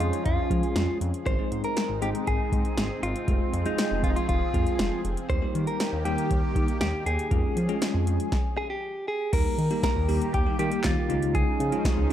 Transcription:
Already playing: analog synth pad F3 C#4 G#4, tine electric piano G#3 C#4 F4 G#4
0.00 analog synth bass F2, clean electric guitar F4, closed hi-hat
0.13 closed hi-hat
0.26 analog synth bass F2, clean electric guitar F4, kick, closed hi-hat
0.51 analog synth bass F3, tine electric piano G#3 C#4 F4 G#4, kick, closed hi-hat
0.63 closed hi-hat
0.76 analog synth bass F2, snare, closed hi-hat
1.01 analog synth bass F2, closed hi-hat
1.14 closed hi-hat
1.26 analog synth bass G#1, analog synth pad G#3 C4 D#4, tine electric piano G#3 C4 D#4 G#4, clean electric guitar C5, kick, closed hi-hat
1.39 tine electric piano G#3 C4 D#4 G#4
1.51 analog synth bass G#2, closed hi-hat
1.64 clean electric guitar A#4, closed hi-hat
1.77 snare, closed hi-hat
1.89 analog synth bass G#1
2.02 analog synth bass G#1, tine electric piano G#3 C4 D#4 G#4, clean electric guitar G4, closed hi-hat
2.15 closed hi-hat
2.27 analog synth bass G#1, clean electric guitar G#4, kick, closed hi-hat
2.52 analog synth bass G#2, kick, closed hi-hat
2.65 closed hi-hat
2.77 analog synth bass G#1, snare, closed hi-hat
3.03 analog synth bass G#1, clean electric guitar F4, closed hi-hat
3.16 closed hi-hat
3.28 analog synth bass F1, analog synth pad F3 G#4, tine electric piano G#3 C4 F4 G#4, kick, closed hi-hat
3.53 analog synth bass F2, closed hi-hat
3.66 tine electric piano G#3 C4 F4 G#4, clean electric guitar D#4, closed hi-hat
3.78 snare, closed hi-hat
3.91 analog synth bass F1
4.03 analog synth bass F1, clean electric guitar F4, kick, closed hi-hat
4.10 clean electric guitar D#4
4.16 clean electric guitar F4, closed hi-hat
4.29 analog synth bass F1, clean electric guitar F4, kick, closed hi-hat
4.54 analog synth bass F2, tine electric piano G#3 C4 F4 G#4, kick, closed hi-hat
4.67 closed hi-hat
4.79 analog synth bass F1, snare, closed hi-hat
5.04 analog synth bass F1, closed hi-hat
5.17 closed hi-hat
5.30 analog synth bass D#2, analog synth pad D#3 A#3 G4, tine electric piano G3 A#3 D#4 G4, clean electric guitar C5, kick, closed hi-hat
5.42 tine electric piano G3 A#3 D#4 G4
5.55 analog synth bass D#3, closed hi-hat
5.67 clean electric guitar A#4, closed hi-hat
5.80 snare, closed hi-hat
5.93 analog synth bass D#2
6.05 analog synth bass D#2, tine electric piano G3 A#3 D#4 G4, clean electric guitar G4, closed hi-hat
6.18 closed hi-hat
6.31 analog synth bass D#2, kick, closed hi-hat
6.56 analog synth bass D#3, kick, closed hi-hat
6.68 closed hi-hat
6.81 analog synth bass D#2, clean electric guitar G4, snare, closed hi-hat
7.06 analog synth bass D#2, clean electric guitar G#4, closed hi-hat
7.19 closed hi-hat
7.31 analog synth bass F2, analog synth pad F3 C#4 G#4, tine electric piano G#3 C#4 F4 G#4, kick, closed hi-hat
7.57 analog synth bass F3, closed hi-hat
7.69 tine electric piano G#3 C#4 F4 G#4, closed hi-hat
7.82 snare, closed hi-hat
7.94 analog synth bass F2
8.07 analog synth bass F2, closed hi-hat
8.20 closed hi-hat
8.32 kick, snare
8.57 clean electric guitar G#4
8.70 clean electric guitar G4
9.08 clean electric guitar G#4
9.33 analog synth bass D#2, analog synth pad D#3 A#3 G4, tine electric piano G3 A#3 D#4 G4, clean electric guitar A#4, kick, closed hi-hat, crash
9.58 analog synth bass D#3, closed hi-hat
9.71 tine electric piano G3 A#3 D#4 G4, closed hi-hat
9.83 clean electric guitar A#4, kick, snare, closed hi-hat
9.96 analog synth bass D#2
10.09 analog synth bass D#2, tine electric piano G3 A#3 D#4 G4, open hi-hat
10.22 closed hi-hat
10.34 analog synth bass D#2, clean electric guitar G4, kick, closed hi-hat
10.46 tine electric piano G3 A#3 D#4 G4
10.59 analog synth bass D#3, tine electric piano G3 A#3 D#4 G4, clean electric guitar G4, closed hi-hat
10.72 closed hi-hat
10.84 analog synth bass D#2, clean electric guitar F4, kick, snare, clap, closed hi-hat
11.09 analog synth bass C#2, analog synth pad F3 C#4 D#4, tine electric piano G#3 C#4 D#4 F4, closed hi-hat
11.22 closed hi-hat
11.35 clean electric guitar G#4, kick, closed hi-hat
11.60 analog synth bass C#3, closed hi-hat
11.72 tine electric piano G#3 C#4 D#4 F4, closed hi-hat
11.85 kick, snare, closed hi-hat
11.98 analog synth bass C#2

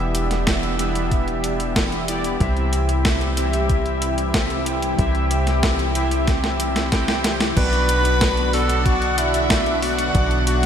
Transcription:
Already playing: analog synth bass E1, analog synth pad B2 E3 G3 D4 G4, analog polysynth E3 B3 E4 G4 E5
0.15 closed hi-hat
0.31 snare, closed hi-hat
0.47 kick, snare, closed hi-hat
0.63 closed hi-hat
0.79 analog polysynth E3 B3 E4 G4 E5, closed hi-hat
0.95 closed hi-hat
1.11 kick, closed hi-hat
1.28 closed hi-hat
1.44 closed hi-hat
1.60 closed hi-hat
1.76 kick, snare, closed hi-hat
1.92 closed hi-hat
2.08 analog polysynth B3 E4 G4 D5, closed hi-hat
2.24 closed hi-hat
2.40 analog synth bass C2, analog polysynth C3 C4 E4 G4 E5, analog synth pad C3 E3 G3 E4 G4, kick, closed hi-hat
2.57 closed hi-hat
2.73 closed hi-hat
2.89 closed hi-hat
3.05 kick, snare, closed hi-hat
3.21 closed hi-hat
3.37 analog polysynth C3 C4 E4 G4 E5, closed hi-hat
3.53 closed hi-hat
3.69 kick, closed hi-hat
3.86 closed hi-hat
4.02 closed hi-hat
4.18 closed hi-hat
4.34 kick, snare, closed hi-hat
4.50 closed hi-hat
4.66 closed hi-hat
4.82 closed hi-hat
4.99 analog synth bass C2, analog polysynth C3 C4 E4 G4 E5, kick, closed hi-hat
5.15 closed hi-hat
5.31 closed hi-hat
5.47 snare, closed hi-hat
5.63 kick, snare, closed hi-hat
5.79 closed hi-hat
5.95 analog polysynth C3 C4 E4 G4 E5, closed hi-hat
6.11 closed hi-hat
6.27 kick, snare, closed hi-hat
6.44 snare, closed hi-hat
6.60 closed hi-hat
6.76 snare, closed hi-hat
6.92 analog polysynth C3 C4 E4 G4 G5, kick, snare, closed hi-hat
7.08 snare, closed hi-hat
7.24 snare, closed hi-hat
7.41 snare, closed hi-hat
7.57 analog synth bass B1, analog polysynth B2 B3 D4 F#4 D5, analog synth pad B2 D3 F#3 D4 F#4, tenor saxophone B4, string machine B5, kick, closed hi-hat, crash
7.73 closed hi-hat
7.89 closed hi-hat
8.05 closed hi-hat
8.21 kick, snare, closed hi-hat
8.37 closed hi-hat
8.53 analog polysynth B2 B3 D4 F#4 D5, tenor saxophone A4, string machine A5, open hi-hat
8.69 closed hi-hat
8.86 tenor saxophone F#4, string machine F#5, kick, closed hi-hat
9.02 closed hi-hat
9.18 tenor saxophone E4, string machine E5, closed hi-hat
9.34 closed hi-hat
9.50 kick, snare, closed hi-hat
9.66 closed hi-hat
9.82 tenor saxophone F#4, string machine F#5, open hi-hat
9.98 closed hi-hat
10.15 analog synth bass B1, analog polysynth B2 B3 D4 F#4 D5, analog synth pad E4, kick, closed hi-hat
10.31 closed hi-hat
10.47 tenor saxophone F#4, string machine F#5, closed hi-hat

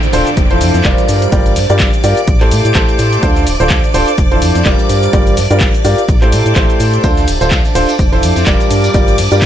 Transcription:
Already playing: ambient pad D4 C5 D5 A5, string machine D5 D6, downlifter
0.03 closed hi-hat, shaker
0.13 fm bass D1, upright piano D4 F4 A4 C5, closed hi-hat, open hi-hat, shaker
0.27 closed hi-hat, shaker
0.37 fm bass F1, kick, closed hi-hat, shaker
0.51 upright piano F3 E4 F4 A4 C5, closed hi-hat
0.61 fm bass F2, closed hi-hat, open hi-hat, shaker
0.74 fm bass F2, snare, closed hi-hat, shaker
0.84 fm bass F1, upright piano G3 F4 G4 A#4 D5, kick, snare, clap, closed hi-hat, shaker
0.98 snare, closed hi-hat, shaker
1.08 fm bass G2, ambient pad G4, closed hi-hat, open hi-hat, shaker
1.22 ambient pad D5, closed hi-hat, shaker
1.32 fm bass G1, upright piano G3 F4 G4 A#4 D5, kick, closed hi-hat, shaker
1.46 closed hi-hat, shaker
1.56 fm bass G2, snare, closed hi-hat, open hi-hat, shaker
1.70 fm bass G2, upright piano G3 F4 G4 A#4 D5, closed hi-hat, shaker
1.80 fm bass G1, kick, snare, clap, closed hi-hat, shaker
1.93 closed hi-hat, shaker
2.04 fm bass G2, upright piano F4 G4 A#4 D5, closed hi-hat, open hi-hat, shaker
2.17 closed hi-hat, shaker
2.28 fm bass A1, kick, closed hi-hat, shaker
2.41 upright piano A3 E4 G4 A4 C5, clap, closed hi-hat
2.51 fm bass A2, ambient pad C5, closed hi-hat, open hi-hat, shaker
2.65 fm bass A2, closed hi-hat, shaker
2.71 ambient pad E5 A5, clap
2.75 fm bass A1, upright piano A3 E4 G4 A4 C5, kick, snare, closed hi-hat, shaker
2.89 closed hi-hat, shaker
2.99 fm bass A2, closed hi-hat, open hi-hat, shaker
3.13 closed hi-hat, shaker
3.23 fm bass D2, upright piano D3 D4 F4 A4 C5, ambient pad D4, kick, closed hi-hat, shaker
3.36 snare, closed hi-hat, shaker
3.41 ambient pad D5
3.47 fm bass D1, closed hi-hat, open hi-hat, shaker
3.60 fm bass D1, upright piano D3 D4 F4 A4 C5, closed hi-hat, shaker
3.70 fm bass D2, kick, snare, clap, closed hi-hat, shaker
3.84 closed hi-hat, shaker
3.94 fm bass D1, upright piano D4 F4 A4 C5, closed hi-hat, open hi-hat, shaker
4.08 closed hi-hat, shaker
4.18 fm bass F1, kick, closed hi-hat, shaker
4.32 upright piano F3 E4 F4 A4 C5, closed hi-hat
4.42 fm bass F2, closed hi-hat, open hi-hat, shaker
4.55 fm bass F2, snare, closed hi-hat, shaker
4.65 fm bass F1, upright piano G3 F4 G4 A#4 D5, kick, snare, clap, closed hi-hat, shaker
4.79 snare, closed hi-hat, shaker
4.89 fm bass G2, ambient pad G4, closed hi-hat, open hi-hat, shaker
5.03 closed hi-hat, shaker
5.12 fm bass G1, upright piano G3 F4 G4 A#4 D5, ambient pad D5, kick, closed hi-hat, shaker
5.21 ambient pad F5
5.27 closed hi-hat, shaker
5.37 fm bass G2, snare, closed hi-hat, open hi-hat, shaker
5.51 fm bass G2, upright piano G3 F4 G4 A#4 D5, closed hi-hat, shaker
5.60 fm bass G1, kick, snare, clap, closed hi-hat, shaker
5.74 closed hi-hat, shaker
5.85 fm bass G2, upright piano F4 G4 A#4 D5, closed hi-hat, open hi-hat, shaker
5.98 closed hi-hat, shaker
6.08 fm bass A1, kick, closed hi-hat, shaker
6.18 upright piano A3 E4 G4 A4 C5, ambient pad C5, clap, closed hi-hat
6.22 ambient pad A5, closed hi-hat, shaker
6.32 fm bass A2, closed hi-hat, open hi-hat, shaker
6.46 fm bass A2, closed hi-hat, shaker
6.50 ambient pad E5
6.56 fm bass A1, upright piano A3 E4 G4 A4 C5, kick, snare, clap, closed hi-hat, shaker
6.70 closed hi-hat, shaker
6.80 fm bass A2, closed hi-hat, open hi-hat, shaker
6.94 closed hi-hat, shaker
7.03 fm bass D2, upright piano D3 D4 F4 A4 C5, ambient pad D4, string machine D5 D6, kick, closed hi-hat, tambourine, shaker
7.17 ambient pad D5, snare, closed hi-hat, tambourine, shaker
7.28 fm bass D1, closed hi-hat, open hi-hat, ride, shaker
7.41 fm bass D1, upright piano D3 D4 F4 A4 C5, closed hi-hat, tambourine, shaker
7.51 fm bass D2, kick, snare, clap, closed hi-hat, tambourine, shaker
7.65 closed hi-hat, tambourine, shaker
7.75 fm bass D1, upright piano D4 F4 A4 C5, closed hi-hat, open hi-hat, ride, shaker
7.89 closed hi-hat, tambourine, shaker
7.99 fm bass F1, kick, closed hi-hat, tambourine, shaker
8.12 upright piano F3 E4 F4 A4 C5, closed hi-hat, tambourine
8.23 fm bass F2, closed hi-hat, open hi-hat, ride, shaker
8.36 fm bass F2, snare, closed hi-hat, tambourine, shaker
8.46 fm bass F1, upright piano G3 F4 G4 A#4 D5, kick, snare, clap, closed hi-hat, tambourine, shaker
8.60 snare, closed hi-hat, tambourine, shaker
8.70 fm bass G2, ambient pad G4, closed hi-hat, open hi-hat, ride, shaker
8.83 ambient pad A#5, closed hi-hat, tambourine, shaker
8.91 fm bass G1, upright piano G3 F4 G4 A#4 D5, ambient pad F5, kick, closed hi-hat, tambourine, shaker
8.99 ambient pad D5
9.08 closed hi-hat, tambourine, shaker
9.18 fm bass G2, snare, closed hi-hat, open hi-hat, ride, shaker
9.32 fm bass G2, upright piano G3 F4 G4 A#4 D5, tambourine, shaker
9.41 fm bass G1, kick, snare, clap, closed hi-hat, tambourine, shaker

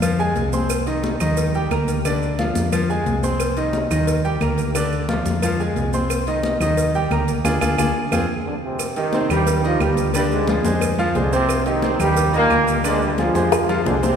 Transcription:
Already playing: fingered electric bass F2
0.02 grand piano F3 F4 F5, cowbell, high conga, claves, maracas
0.19 grand piano G#3 G#4 G#5, high conga, maracas
0.36 fingered electric bass C2, cowbell, high conga, maracas
0.53 grand piano C4 C5 C6, high conga, maracas
0.70 cowbell, high conga, claves, maracas
0.87 grand piano D#3 D#4 D#5, cowbell, high conga, maracas
1.03 cowbell, high conga, maracas
1.20 fingered electric bass D#2, grand piano D#3 D#4 D#5, high conga, low conga, claves, maracas
1.37 cowbell, high conga, low conga, maracas
1.54 grand piano G3 G4 G5, high conga, maracas
1.71 fingered electric bass D2, grand piano A#3 A#4 A#5, cowbell, high conga, claves, maracas
1.88 cowbell, high conga, maracas
2.05 grand piano D3 D4 D5, cowbell, high conga, claves, maracas
2.22 maracas
2.39 grand piano F3 F4 F5, cowbell, high conga, maracas
2.55 fingered electric bass F2, high conga, maracas
2.72 grand piano F3 F4 F5, cowbell, high conga, claves, maracas
2.89 grand piano G#3 G#4 G#5, high conga, maracas
3.06 fingered electric bass C2, cowbell, high conga, maracas
3.23 grand piano C4 C5 C6, high conga, maracas
3.40 cowbell, high conga, claves, maracas
3.57 grand piano D#3 D#4 D#5, cowbell, high conga, maracas
3.73 cowbell, high conga, maracas
3.91 fingered electric bass D#2, grand piano D#3 D#4 D#5, high conga, low conga, claves, maracas
4.07 cowbell, high conga, maracas
4.24 grand piano G3 G4 G5, high conga, maracas
4.41 fingered electric bass D2, grand piano A#3 A#4 A#5, cowbell, high conga, claves, maracas
4.58 cowbell, high conga, maracas
4.75 grand piano D3 D4 D5, cowbell, high conga, claves, maracas
4.92 high conga, maracas
5.09 grand piano F3 F4 F5, cowbell, high conga, maracas
5.26 fingered electric bass F2, high conga, maracas
5.42 grand piano F3 F4 F5, cowbell, high conga, claves, maracas
5.59 grand piano G#3 G#4 G#5, high conga, maracas
5.76 fingered electric bass C2, cowbell, high conga, maracas
5.93 grand piano C4 C5 C6, high conga, maracas
6.10 cowbell, high conga, claves, maracas
6.27 grand piano D#3 D#4 D#5, cowbell, high conga, maracas
6.43 cowbell, high conga, maracas
6.60 fingered electric bass D#2, grand piano D#3 D#4 D#5, high conga, low conga, claves, maracas
6.77 cowbell, high conga, maracas
6.94 grand piano G3 G4 G5, high conga, maracas
7.11 fingered electric bass D2, grand piano A#3 A#4 A#5, cowbell, high conga, claves, maracas
7.28 cowbell, high conga, maracas
7.44 fingered electric bass D2, grand piano D4 F4 G#4, cowbell, high conga, claves, maracas
7.61 fingered electric bass D2, grand piano D4 F4 G#4, cowbell, high conga, claves, maracas
7.78 fingered electric bass D2, grand piano D4 F4 G#4, cowbell, high conga, claves, maracas
8.12 fingered electric bass F2, grand piano C4 F4 G#4, cowbell, high conga, claves, maracas
8.47 trombone section D3 D4
8.64 trombone section C3 C4
8.79 cowbell, high conga, claves, maracas
8.96 grand piano D#3 D#4 G4, trombone section D#3 D#4, cowbell, high conga, maracas
9.13 grand piano C3 C4 C5, cowbell, high conga, maracas
9.30 fingered electric bass D#2, trombone section G2 G3, grand piano G3 G4 A#4, high conga, low conga, claves, maracas
9.47 cowbell, high conga, low conga, maracas
9.63 grand piano D#3 D#4 D#5, trombone section F3 F4, high conga, maracas
9.80 fingered electric bass D2, trombone section G2 G3, grand piano G3 G4 A#4, cowbell, high conga, claves, maracas
9.97 cowbell, high conga, maracas
10.14 trombone section G2 G3, grand piano D3 D4 D5, cowbell, high conga, claves, maracas
10.31 trombone section G#2 G#3, high conga, maracas
10.48 grand piano F3 F4 G#4, cowbell, high conga, maracas
10.65 fingered electric bass F2, grand piano G#3 G#4 C5, high conga, maracas
10.81 cowbell, high conga, claves, maracas
10.98 grand piano F3 F4 F5, high conga, maracas
11.15 fingered electric bass C2, trombone section D3 D4, grand piano G#3 G#4 C5, cowbell, high conga, maracas
11.32 grand piano C3 C4 C5, trombone section C3 C4, maracas
11.49 cowbell, high conga, claves, maracas
11.66 grand piano D#3 D#4 G4, trombone section D#3 D#4, cowbell, high conga, maracas
11.82 grand piano C3 C4 C5, cowbell, high conga, maracas
11.99 fingered electric bass D#2, trombone section G2 G3, grand piano G3 G4 A#4, high conga, low conga, claves, maracas
12.16 cowbell, high conga, maracas
12.33 trombone section A#2 A#3, grand piano D#3 D#4 D#5, high conga, maracas
12.50 fingered electric bass D2, grand piano G3 G4 A#4, cowbell, high conga, claves, maracas
12.67 cowbell, high conga, maracas
12.84 trombone section G#2 G#3, grand piano D3 D4 D5, cowbell, high conga, claves, maracas
13.02 trombone section G2 G3, high conga, maracas
13.18 grand piano F3 F4 G#4, trombone section F3 F4, cowbell, high conga, maracas
13.35 fingered electric bass F2, grand piano G#3 G#4 C5, high bongo, high conga, maracas
13.52 cowbell, high bongo, claves, maracas
13.69 grand piano F3 F4 F5, low bongo, high conga, maracas
13.86 fingered electric bass C2, trombone section D3 D4, grand piano G#3 G#4 C5, cowbell, low bongo, high conga, maracas
14.03 grand piano C3 C4 C5, trombone section C3 C4, low bongo, high conga, maracas

